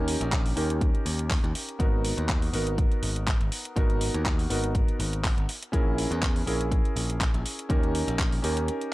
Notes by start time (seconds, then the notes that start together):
Already playing: D#2 C#4 D#4 G4 A#4
0.08 open hi-hat
0.21 A#1, closed hi-hat
0.32 kick, clap, closed hi-hat
0.46 open hi-hat
0.56 D#2 C#4 D#4 G4 A#4, open hi-hat
0.70 closed hi-hat
0.81 kick, closed hi-hat
0.94 muted picked electric bass stroke, closed hi-hat
1.06 D#2, open hi-hat
1.19 closed hi-hat
1.31 kick, clap, open hi-hat
1.44 D#2, closed hi-hat
1.55 open hi-hat
1.69 closed hi-hat
1.79 G#1 B3 D#4 F#4 A#4, kick, closed hi-hat
2.05 open hi-hat
2.17 D#2, closed hi-hat
2.29 kick, clap, closed hi-hat
2.42 open hi-hat
2.53 G#1 B3 D#4 F#4 A#4, open hi-hat
2.67 closed hi-hat
2.78 kick, closed hi-hat
2.92 closed hi-hat
3.03 G#1, open hi-hat
3.16 closed hi-hat
3.27 kick, clap, closed hi-hat
3.40 G#1, closed hi-hat
3.52 open hi-hat
3.65 closed hi-hat
3.76 G#1 B3 D#4 F#4 A#4, kick, closed hi-hat
3.90 closed hi-hat
4.01 open hi-hat
4.14 D#2, closed hi-hat
4.26 kick, clap, closed hi-hat
4.39 open hi-hat
4.50 G#1 B3 D#4 F#4 A#4, open hi-hat
4.64 closed hi-hat
4.75 kick, closed hi-hat
4.88 muted picked electric bass stroke, closed hi-hat
4.99 G#1, open hi-hat
5.13 closed hi-hat
5.24 kick, clap, open hi-hat
5.37 G#1, closed hi-hat
5.49 open hi-hat
5.63 closed hi-hat
5.72 A#1 C#4 E4 G#4 A#4, kick, closed hi-hat
5.98 open hi-hat
6.11 E2, closed hi-hat
6.22 kick, clap, closed hi-hat
6.36 open hi-hat
6.46 A#1 C#4 E4 G#4 A#4, open hi-hat
6.61 closed hi-hat
6.72 kick, closed hi-hat
6.85 closed hi-hat
6.96 A#1, open hi-hat
7.10 closed hi-hat
7.21 kick, clap, closed hi-hat
7.34 A#1, closed hi-hat
7.46 open hi-hat
7.59 closed hi-hat
7.69 D#2 C#4 D#4 G4 A#4, kick, closed hi-hat
7.83 closed hi-hat
7.95 open hi-hat
8.08 A#1, closed hi-hat
8.19 kick, clap, closed hi-hat
8.32 open hi-hat
8.42 D#2 C#4 D#4 G4 A#4, open hi-hat
8.57 closed hi-hat
8.68 closed hi-hat
8.81 closed hi-hat